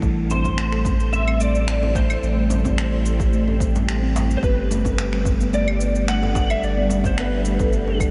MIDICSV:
0, 0, Header, 1, 7, 480
1, 0, Start_track
1, 0, Tempo, 550459
1, 25, Time_signature, 4, 2, 24, 8
1, 7070, End_track
2, 0, Start_track
2, 0, Title_t, "Electric slide guitar"
2, 0, Program_c, 0, 29
2, 272, Note_on_c, 0, 72, 87
2, 980, Note_off_c, 0, 72, 0
2, 983, Note_on_c, 0, 76, 101
2, 1223, Note_on_c, 0, 74, 92
2, 1231, Note_off_c, 0, 76, 0
2, 1703, Note_on_c, 0, 72, 81
2, 1719, Note_off_c, 0, 74, 0
2, 3109, Note_off_c, 0, 72, 0
2, 3812, Note_on_c, 0, 72, 67
2, 3866, Note_off_c, 0, 72, 0
2, 3869, Note_on_c, 0, 71, 91
2, 4792, Note_off_c, 0, 71, 0
2, 4832, Note_on_c, 0, 74, 101
2, 5275, Note_off_c, 0, 74, 0
2, 5305, Note_on_c, 0, 78, 102
2, 5671, Note_on_c, 0, 76, 89
2, 5682, Note_off_c, 0, 78, 0
2, 5787, Note_on_c, 0, 74, 93
2, 5788, Note_off_c, 0, 76, 0
2, 6151, Note_off_c, 0, 74, 0
2, 6155, Note_on_c, 0, 72, 78
2, 6268, Note_off_c, 0, 72, 0
2, 6272, Note_on_c, 0, 71, 81
2, 6953, Note_off_c, 0, 71, 0
2, 7070, End_track
3, 0, Start_track
3, 0, Title_t, "Ambient pad"
3, 0, Program_c, 1, 92
3, 0, Note_on_c, 1, 62, 77
3, 0, Note_on_c, 1, 69, 72
3, 28, Note_on_c, 1, 57, 90
3, 313, Note_on_c, 1, 64, 74
3, 415, Note_on_c, 1, 67, 77
3, 617, Note_off_c, 1, 69, 0
3, 716, Note_on_c, 1, 72, 78
3, 919, Note_off_c, 1, 62, 0
3, 1492, Note_on_c, 1, 79, 77
3, 3865, Note_off_c, 1, 72, 0
3, 3866, Note_off_c, 1, 79, 0
3, 3867, Note_off_c, 1, 57, 0
3, 3869, Note_on_c, 1, 55, 73
3, 4006, Note_on_c, 1, 62, 77
3, 4679, Note_on_c, 1, 69, 90
3, 4892, Note_off_c, 1, 64, 0
3, 5594, Note_on_c, 1, 78, 70
3, 7070, Note_off_c, 1, 55, 0
3, 7070, Note_off_c, 1, 62, 0
3, 7070, Note_off_c, 1, 67, 0
3, 7070, Note_off_c, 1, 69, 0
3, 7070, Note_off_c, 1, 78, 0
3, 7070, End_track
4, 0, Start_track
4, 0, Title_t, "Steel tongue drum"
4, 0, Program_c, 2, 114
4, 25, Note_on_c, 2, 57, 72
4, 145, Note_off_c, 2, 57, 0
4, 263, Note_on_c, 2, 60, 73
4, 384, Note_off_c, 2, 60, 0
4, 503, Note_on_c, 2, 57, 69
4, 618, Note_off_c, 2, 57, 0
4, 628, Note_on_c, 2, 69, 72
4, 738, Note_off_c, 2, 69, 0
4, 868, Note_on_c, 2, 55, 75
4, 978, Note_off_c, 2, 55, 0
4, 1110, Note_on_c, 2, 60, 83
4, 1213, Note_off_c, 2, 60, 0
4, 1222, Note_on_c, 2, 57, 66
4, 1344, Note_off_c, 2, 57, 0
4, 1463, Note_on_c, 2, 60, 80
4, 1584, Note_off_c, 2, 60, 0
4, 1702, Note_on_c, 2, 57, 68
4, 1817, Note_off_c, 2, 57, 0
4, 1833, Note_on_c, 2, 69, 70
4, 1940, Note_off_c, 2, 69, 0
4, 2072, Note_on_c, 2, 55, 69
4, 2180, Note_off_c, 2, 55, 0
4, 2313, Note_on_c, 2, 60, 91
4, 2414, Note_off_c, 2, 60, 0
4, 2428, Note_on_c, 2, 57, 74
4, 2547, Note_off_c, 2, 57, 0
4, 2668, Note_on_c, 2, 60, 68
4, 2787, Note_off_c, 2, 60, 0
4, 2908, Note_on_c, 2, 57, 78
4, 3021, Note_off_c, 2, 57, 0
4, 3038, Note_on_c, 2, 69, 69
4, 3143, Note_off_c, 2, 69, 0
4, 3274, Note_on_c, 2, 55, 76
4, 3381, Note_off_c, 2, 55, 0
4, 3514, Note_on_c, 2, 60, 99
4, 3615, Note_off_c, 2, 60, 0
4, 3628, Note_on_c, 2, 57, 64
4, 3747, Note_off_c, 2, 57, 0
4, 3870, Note_on_c, 2, 59, 73
4, 3988, Note_off_c, 2, 59, 0
4, 4108, Note_on_c, 2, 57, 70
4, 4220, Note_off_c, 2, 57, 0
4, 4236, Note_on_c, 2, 69, 66
4, 4341, Note_off_c, 2, 69, 0
4, 4476, Note_on_c, 2, 55, 67
4, 4582, Note_off_c, 2, 55, 0
4, 4713, Note_on_c, 2, 59, 94
4, 4815, Note_off_c, 2, 59, 0
4, 4827, Note_on_c, 2, 57, 78
4, 4946, Note_off_c, 2, 57, 0
4, 5068, Note_on_c, 2, 59, 69
4, 5187, Note_off_c, 2, 59, 0
4, 5306, Note_on_c, 2, 57, 85
4, 5419, Note_off_c, 2, 57, 0
4, 5430, Note_on_c, 2, 69, 75
4, 5539, Note_off_c, 2, 69, 0
4, 5671, Note_on_c, 2, 55, 70
4, 5779, Note_off_c, 2, 55, 0
4, 5907, Note_on_c, 2, 59, 93
4, 6012, Note_off_c, 2, 59, 0
4, 6025, Note_on_c, 2, 57, 71
4, 6145, Note_off_c, 2, 57, 0
4, 6262, Note_on_c, 2, 59, 71
4, 6384, Note_off_c, 2, 59, 0
4, 6504, Note_on_c, 2, 57, 71
4, 6618, Note_off_c, 2, 57, 0
4, 6629, Note_on_c, 2, 69, 73
4, 6738, Note_off_c, 2, 69, 0
4, 6867, Note_on_c, 2, 55, 67
4, 6977, Note_off_c, 2, 55, 0
4, 7070, End_track
5, 0, Start_track
5, 0, Title_t, "Sub bass"
5, 0, Program_c, 3, 38
5, 21, Note_on_c, 3, 33, 100
5, 1888, Note_off_c, 3, 33, 0
5, 1946, Note_on_c, 3, 33, 98
5, 3811, Note_off_c, 3, 33, 0
5, 3862, Note_on_c, 3, 31, 94
5, 5729, Note_off_c, 3, 31, 0
5, 5783, Note_on_c, 3, 31, 97
5, 7070, Note_off_c, 3, 31, 0
5, 7070, End_track
6, 0, Start_track
6, 0, Title_t, "Djembe"
6, 25, Note_on_c, 9, 62, 36
6, 112, Note_off_c, 9, 62, 0
6, 267, Note_on_c, 9, 62, 34
6, 271, Note_on_c, 9, 63, 71
6, 354, Note_off_c, 9, 62, 0
6, 358, Note_off_c, 9, 63, 0
6, 392, Note_on_c, 9, 62, 47
6, 393, Note_on_c, 9, 64, 78
6, 479, Note_off_c, 9, 62, 0
6, 480, Note_off_c, 9, 64, 0
6, 751, Note_on_c, 9, 64, 88
6, 839, Note_off_c, 9, 64, 0
6, 986, Note_on_c, 9, 63, 61
6, 1073, Note_off_c, 9, 63, 0
6, 1594, Note_on_c, 9, 63, 64
6, 1681, Note_off_c, 9, 63, 0
6, 1707, Note_on_c, 9, 62, 68
6, 1794, Note_off_c, 9, 62, 0
6, 2180, Note_on_c, 9, 62, 38
6, 2183, Note_on_c, 9, 63, 70
6, 2267, Note_off_c, 9, 62, 0
6, 2270, Note_off_c, 9, 63, 0
6, 2311, Note_on_c, 9, 62, 46
6, 2317, Note_on_c, 9, 64, 81
6, 2398, Note_off_c, 9, 62, 0
6, 2404, Note_off_c, 9, 64, 0
6, 2791, Note_on_c, 9, 62, 31
6, 2878, Note_off_c, 9, 62, 0
6, 3032, Note_on_c, 9, 63, 64
6, 3119, Note_off_c, 9, 63, 0
6, 3275, Note_on_c, 9, 63, 80
6, 3363, Note_off_c, 9, 63, 0
6, 3626, Note_on_c, 9, 63, 61
6, 3628, Note_on_c, 9, 62, 65
6, 3713, Note_off_c, 9, 63, 0
6, 3715, Note_off_c, 9, 62, 0
6, 3749, Note_on_c, 9, 63, 34
6, 3836, Note_off_c, 9, 63, 0
6, 3866, Note_on_c, 9, 62, 35
6, 3953, Note_off_c, 9, 62, 0
6, 4104, Note_on_c, 9, 62, 34
6, 4107, Note_on_c, 9, 63, 73
6, 4191, Note_off_c, 9, 62, 0
6, 4194, Note_off_c, 9, 63, 0
6, 4230, Note_on_c, 9, 62, 50
6, 4236, Note_on_c, 9, 64, 91
6, 4317, Note_off_c, 9, 62, 0
6, 4323, Note_off_c, 9, 64, 0
6, 4590, Note_on_c, 9, 64, 92
6, 4678, Note_off_c, 9, 64, 0
6, 4824, Note_on_c, 9, 63, 55
6, 4912, Note_off_c, 9, 63, 0
6, 5433, Note_on_c, 9, 63, 71
6, 5521, Note_off_c, 9, 63, 0
6, 5539, Note_on_c, 9, 62, 63
6, 5626, Note_off_c, 9, 62, 0
6, 6015, Note_on_c, 9, 63, 79
6, 6021, Note_on_c, 9, 62, 31
6, 6102, Note_off_c, 9, 63, 0
6, 6108, Note_off_c, 9, 62, 0
6, 6137, Note_on_c, 9, 64, 81
6, 6141, Note_on_c, 9, 62, 51
6, 6225, Note_off_c, 9, 64, 0
6, 6228, Note_off_c, 9, 62, 0
6, 6619, Note_on_c, 9, 62, 30
6, 6706, Note_off_c, 9, 62, 0
6, 6869, Note_on_c, 9, 63, 58
6, 6956, Note_off_c, 9, 63, 0
6, 7070, End_track
7, 0, Start_track
7, 0, Title_t, "Drums"
7, 20, Note_on_c, 9, 36, 109
7, 25, Note_on_c, 9, 82, 31
7, 107, Note_off_c, 9, 36, 0
7, 112, Note_off_c, 9, 82, 0
7, 263, Note_on_c, 9, 82, 72
7, 350, Note_off_c, 9, 82, 0
7, 387, Note_on_c, 9, 36, 55
7, 393, Note_on_c, 9, 82, 45
7, 474, Note_off_c, 9, 36, 0
7, 480, Note_off_c, 9, 82, 0
7, 505, Note_on_c, 9, 26, 92
7, 506, Note_on_c, 9, 82, 29
7, 592, Note_off_c, 9, 26, 0
7, 593, Note_off_c, 9, 82, 0
7, 632, Note_on_c, 9, 26, 32
7, 719, Note_off_c, 9, 26, 0
7, 741, Note_on_c, 9, 36, 98
7, 746, Note_on_c, 9, 82, 74
7, 828, Note_off_c, 9, 36, 0
7, 833, Note_off_c, 9, 82, 0
7, 872, Note_on_c, 9, 82, 43
7, 959, Note_off_c, 9, 82, 0
7, 986, Note_on_c, 9, 82, 31
7, 1074, Note_off_c, 9, 82, 0
7, 1113, Note_on_c, 9, 75, 70
7, 1200, Note_off_c, 9, 75, 0
7, 1223, Note_on_c, 9, 82, 75
7, 1310, Note_off_c, 9, 82, 0
7, 1352, Note_on_c, 9, 82, 42
7, 1439, Note_off_c, 9, 82, 0
7, 1464, Note_on_c, 9, 26, 105
7, 1465, Note_on_c, 9, 82, 32
7, 1551, Note_off_c, 9, 26, 0
7, 1552, Note_off_c, 9, 82, 0
7, 1702, Note_on_c, 9, 36, 103
7, 1706, Note_on_c, 9, 82, 63
7, 1789, Note_off_c, 9, 36, 0
7, 1793, Note_off_c, 9, 82, 0
7, 1831, Note_on_c, 9, 75, 75
7, 1832, Note_on_c, 9, 82, 43
7, 1918, Note_off_c, 9, 75, 0
7, 1919, Note_off_c, 9, 82, 0
7, 1946, Note_on_c, 9, 82, 30
7, 2034, Note_off_c, 9, 82, 0
7, 2184, Note_on_c, 9, 82, 74
7, 2271, Note_off_c, 9, 82, 0
7, 2309, Note_on_c, 9, 36, 60
7, 2314, Note_on_c, 9, 82, 44
7, 2396, Note_off_c, 9, 36, 0
7, 2401, Note_off_c, 9, 82, 0
7, 2426, Note_on_c, 9, 26, 97
7, 2427, Note_on_c, 9, 82, 31
7, 2513, Note_off_c, 9, 26, 0
7, 2514, Note_off_c, 9, 82, 0
7, 2664, Note_on_c, 9, 82, 77
7, 2751, Note_off_c, 9, 82, 0
7, 2788, Note_on_c, 9, 36, 109
7, 2794, Note_on_c, 9, 82, 41
7, 2876, Note_off_c, 9, 36, 0
7, 2882, Note_off_c, 9, 82, 0
7, 2905, Note_on_c, 9, 82, 34
7, 2992, Note_off_c, 9, 82, 0
7, 3143, Note_on_c, 9, 36, 101
7, 3149, Note_on_c, 9, 82, 77
7, 3230, Note_off_c, 9, 36, 0
7, 3236, Note_off_c, 9, 82, 0
7, 3274, Note_on_c, 9, 82, 42
7, 3361, Note_off_c, 9, 82, 0
7, 3388, Note_on_c, 9, 26, 106
7, 3389, Note_on_c, 9, 82, 33
7, 3476, Note_off_c, 9, 26, 0
7, 3476, Note_off_c, 9, 82, 0
7, 3628, Note_on_c, 9, 82, 69
7, 3715, Note_off_c, 9, 82, 0
7, 3756, Note_on_c, 9, 82, 46
7, 3843, Note_off_c, 9, 82, 0
7, 3861, Note_on_c, 9, 36, 114
7, 3869, Note_on_c, 9, 82, 33
7, 3949, Note_off_c, 9, 36, 0
7, 3956, Note_off_c, 9, 82, 0
7, 4109, Note_on_c, 9, 82, 76
7, 4196, Note_off_c, 9, 82, 0
7, 4227, Note_on_c, 9, 36, 59
7, 4235, Note_on_c, 9, 82, 46
7, 4314, Note_off_c, 9, 36, 0
7, 4322, Note_off_c, 9, 82, 0
7, 4346, Note_on_c, 9, 26, 97
7, 4347, Note_on_c, 9, 82, 34
7, 4434, Note_off_c, 9, 26, 0
7, 4434, Note_off_c, 9, 82, 0
7, 4472, Note_on_c, 9, 26, 29
7, 4559, Note_off_c, 9, 26, 0
7, 4581, Note_on_c, 9, 36, 104
7, 4587, Note_on_c, 9, 82, 77
7, 4668, Note_off_c, 9, 36, 0
7, 4674, Note_off_c, 9, 82, 0
7, 4713, Note_on_c, 9, 82, 42
7, 4800, Note_off_c, 9, 82, 0
7, 4825, Note_on_c, 9, 82, 36
7, 4913, Note_off_c, 9, 82, 0
7, 4951, Note_on_c, 9, 75, 71
7, 5038, Note_off_c, 9, 75, 0
7, 5063, Note_on_c, 9, 82, 77
7, 5150, Note_off_c, 9, 82, 0
7, 5191, Note_on_c, 9, 82, 45
7, 5278, Note_off_c, 9, 82, 0
7, 5304, Note_on_c, 9, 26, 101
7, 5305, Note_on_c, 9, 82, 35
7, 5391, Note_off_c, 9, 26, 0
7, 5392, Note_off_c, 9, 82, 0
7, 5539, Note_on_c, 9, 36, 105
7, 5544, Note_on_c, 9, 82, 74
7, 5626, Note_off_c, 9, 36, 0
7, 5631, Note_off_c, 9, 82, 0
7, 5669, Note_on_c, 9, 75, 73
7, 5670, Note_on_c, 9, 82, 46
7, 5757, Note_off_c, 9, 75, 0
7, 5757, Note_off_c, 9, 82, 0
7, 5783, Note_on_c, 9, 82, 33
7, 5870, Note_off_c, 9, 82, 0
7, 6021, Note_on_c, 9, 82, 76
7, 6108, Note_off_c, 9, 82, 0
7, 6144, Note_on_c, 9, 36, 61
7, 6148, Note_on_c, 9, 82, 48
7, 6231, Note_off_c, 9, 36, 0
7, 6235, Note_off_c, 9, 82, 0
7, 6260, Note_on_c, 9, 26, 96
7, 6260, Note_on_c, 9, 82, 32
7, 6347, Note_off_c, 9, 26, 0
7, 6348, Note_off_c, 9, 82, 0
7, 6497, Note_on_c, 9, 82, 79
7, 6584, Note_off_c, 9, 82, 0
7, 6623, Note_on_c, 9, 36, 108
7, 6624, Note_on_c, 9, 82, 41
7, 6711, Note_off_c, 9, 36, 0
7, 6711, Note_off_c, 9, 82, 0
7, 6738, Note_on_c, 9, 82, 34
7, 6825, Note_off_c, 9, 82, 0
7, 6977, Note_on_c, 9, 36, 99
7, 6980, Note_on_c, 9, 75, 52
7, 6981, Note_on_c, 9, 82, 75
7, 7064, Note_off_c, 9, 36, 0
7, 7067, Note_off_c, 9, 75, 0
7, 7068, Note_off_c, 9, 82, 0
7, 7070, End_track
0, 0, End_of_file